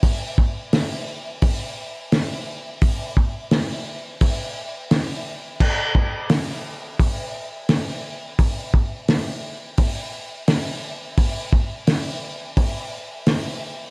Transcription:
\new DrumStaff \with { instrumentName = "Drums" } \drummode { \time 4/4 \tempo 4 = 86 <hho bd>8 bd8 <hho sn>4 <hho bd>4 <hho sn>4 | <hho bd>8 bd8 <hho sn>4 <hho bd>4 <hho sn>4 | <cymc bd>8 bd8 <hho sn>4 <hho bd>4 <hho sn>4 | <hho bd>8 bd8 <hho sn>4 <hho bd>4 <hho sn>4 |
<hho bd>8 bd8 <hho sn>4 <hho bd>4 <hho sn>4 | }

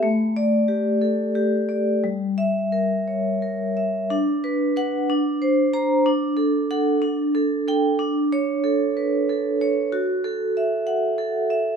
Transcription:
\new Staff \with { instrumentName = "Vibraphone" } { \time 6/8 \key d \major \tempo 4. = 62 << { r8 d''4 r4. | r8 e''4 r4. | r4 fis''8 r4 bes''8 | r4 fis''8 r4 g''8 |
r8 cis''4 r4. | r4. fis''8 r4 | } \\ { a4 g'8 a'8 g'8 d''8 | g4 bes'8 cis''8 bes'8 e''8 | d'8 b'8 b'8 d'8 c''8 c''8 | d'8 a'8 a'8 d'8 a'8 a'8 |
d'4 a'8 b'8 a'8 cis''8 | fis'8 a'8 e''4 a'8 e''8 | } >> }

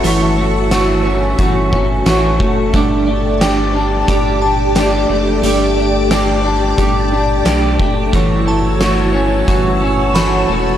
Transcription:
<<
  \new Staff \with { instrumentName = "Synth bell" } { \time 4/4 \key a \mixolydian \tempo 4 = 89 a''8 r2. r8 | r4 g''4. a''4. | r1 | r8 a''4. r4 b''4 | }
  \new Staff \with { instrumentName = "String machine" } { \time 4/4 \key a \mixolydian << { <fis' e'' cis'''>1 | <g' d'' d'''>1~ | <g' d'' d'''>1 | <fis' cis'' e'''>1 | } \\ { a''1~ | a''1~ | a''1 | a''1 | } >> }
  \new Staff \with { instrumentName = "Clean electric guitar" } { \time 4/4 \key a \mixolydian <e g a fis' cis''>8 <a fis' cis''>8 <e a fis' cis''>8 <a fis' cis''>8 <e g a fis' cis''>8 <a fis' cis''>8 <e a fis' cis''>8 <a fis' cis''>8 | <g a d' g' d''>8 <d' g' d''>8 <a d' g' d''>8 <d' g' d''>8 <g a d' g' d''>8 <d' g' d''>8 <a d' g' d''>8 <d' g' d''>8 | <g a d' g' d''>8 <d' g' d''>8 <a d' g' d''>8 <d' g' d''>8 <g a d' g' d''>8 <d' g' d''>8 <a d' g' d''>8 <d' g' d''>8 | <e g a fis' cis''>8 <a fis' cis''>8 <e a fis' cis''>8 <a fis' cis''>8 <e g a fis' cis''>8 <a fis' cis''>8 <e a fis' cis''>8 <a fis' cis''>8 | }
  \new Staff \with { instrumentName = "Clean electric guitar" } { \time 4/4 \key a \mixolydian <e a cis' fis'>8 a8 fis'8 cis'8 fis'8 cis'8 fis'8 a8 | a8 a8 g'8 d'8 g'8 d'8 g'8 a8 | a8 a8 g'8 d'8 g'8 d'8 g'8 a8 | e8 a8 fis'8 cis'8 fis'8 cis'8 fis'8 a8 | }
  \new Staff \with { instrumentName = "Sub bass" } { \clef bass \time 4/4 \key a \mixolydian g,,2 g,,4 a,,8 fis,,8 | g,,2 g,,4. fis,,8 | g,,2 g,,4 b,,8 fis,,8 | g,,2 g,,4. e,,8 | }
  \new DrumStaff \with { instrumentName = "Drums" } \drummode { \time 4/4 hh4 <hh sn tamb>4 <hh bd>8 bd8 <hh sn tamb>8 bd8 | <hh bd>4 <hh sn tamb>4 <hh bd>4 <hh sn tamb>4 | hh4 <hh sn tamb>4 <hh bd>4 <hh sn tamb>8 bd8 | <hh bd>4 <hh sn tamb>4 <hh bd>4 <hh sn tamb>4 | }
>>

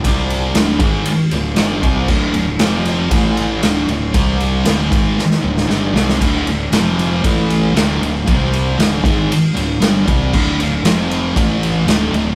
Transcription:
<<
  \new Staff \with { instrumentName = "Distorted electric guitar" } { \clef bass \time 4/4 \key d \minor \tempo 4 = 116 <c g c'>4 <d, a, d>8 <gis, ees gis>8 r8 <d, a,>8 <g, d g>8 <c g c'>8 | <d, a, d>8 <d, a,>8 <f, c f>4 <a, e a>4 <d, a, d>8 <d, a,>8 | <c g c'>4 <d, a, d>8 <gis, ees gis>8 r8 <d, a,>8 <g, d g>8 <c g c'>8 | <d, a, d>8 <d, a,>8 <f, c f>4 <a, e a>4 <d, a, d>8 <d, a,>8 |
<c g c'>4 <d, a, d>8 <gis, ees gis>8 r8 <d, a,>8 <g, d g>8 <c g c'>8 | <d, a, d>8 <d, a,>8 <f, c f>4 <a, e a>4 <d, a, d>8 <d, a,>8 | }
  \new Staff \with { instrumentName = "Picked electric bass" } { \clef bass \time 4/4 \key d \minor c,4 d,,8 gis,,8 r8 d,,8 g,,8 c,8 | d,,8 d,,8 f,,4 a,,4 d,,8 d,,8 | c,4 d,,8 gis,,8 r8 d,,8 g,,8 c,8 | d,,8 d,,8 f,,4 a,,4 d,,8 d,,8 |
c,4 d,,8 gis,,8 r8 d,,8 g,,8 c,8 | d,,8 d,,8 f,,4 a,,4 d,,8 d,,8 | }
  \new DrumStaff \with { instrumentName = "Drums" } \drummode { \time 4/4 <bd cymr>8 cymr8 <cymr sn>8 <bd cymr>8 cymr8 cymr8 <cymr sn>8 <bd cymr>8 | <cymc bd>8 cymr8 <cymr sn>8 <cymr sn>8 <bd cymr>8 cymr8 <cymr sn>8 cymr8 | <bd cymr>8 cymr8 <cymr sn>8 <bd cymr>8 sn16 sn8 sn16 sn8 sn16 sn16 | <cymc bd cymr>8 cymr8 <cymr sn>8 <cymr sn>8 <bd cymr>8 cymr8 <cymr sn>8 cymr8 |
<bd cymr>8 cymr8 <cymr sn>8 <bd cymr>8 cymr8 cymr8 <cymr sn>8 <bd cymr>8 | <cymc bd>8 cymr8 <cymr sn>8 cymr8 <bd cymr>8 cymr8 <cymr sn>8 cymr8 | }
>>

